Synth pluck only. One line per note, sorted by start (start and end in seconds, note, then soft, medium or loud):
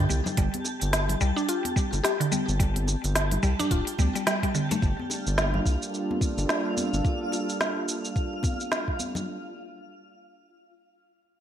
0.09 0.25 G3 medium
0.38 0.47 G3 medium
1.21 1.36 G3 loud
1.36 1.47 D4 loud
1.49 1.75 F4 medium
1.76 2.03 G3 medium
2.04 2.19 G4 loud
2.20 2.31 D3 medium
2.32 2.47 G3 medium
2.59 2.69 G3 medium
3.43 3.58 G3 loud
3.59 3.70 D4 loud
3.71 3.86 F4 medium
3.99 4.14 G3 medium
4.15 4.26 G3 medium
4.27 4.41 G3 medium
4.43 4.54 G3 medium
4.55 4.70 D3 medium
4.71 4.82 A3 medium